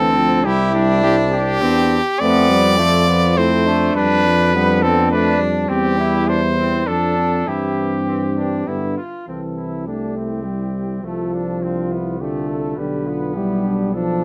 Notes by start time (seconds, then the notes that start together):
Already playing: D2 E3 C4 A4
0.16 F3
0.45 C2 G3 E4 G4
0.74 G3 D4
1.02 C4 G4
1.33 G4
1.61 E2 B3 C4 D4
2.20 F2 A3 B3 C4 D5
2.50 G3
2.77 F3 A3 F4
3.08 B3
3.37 A3 C4 E4 C5
3.67 A3 D4
3.95 F2 G3 D4 B4
4.25 F3
4.54 G3 B3 D4
4.82 B3 C4 A4
5.11 A3 D4 B4
5.41 G3
5.69 E2 C4 G4
5.99 E4
6.27 D4 C5
6.57 C4
6.86 F2 F3 D4 A4
7.17 C4
7.46 G2 E3 C4 E4 G4
8.07 C4
8.38 D4
8.67 G2 D3 B3 E4
8.97 F4
9.28 C2 E3 C4 A4
9.57 E4
9.87 A3 D4 G4
10.17 C4 E4
10.45 G3
11.03 C2 F3 A3 F4 A4
11.34 D4
11.62 C4 D4 F4
11.91 B3 E4
12.20 D3 A3 F4 G4
12.48 A4
12.77 B1 D3 G3 G4 B4
13.07 B3 F4
13.35 G3 E4 G4
13.65 D4
13.94 F3 D4 A4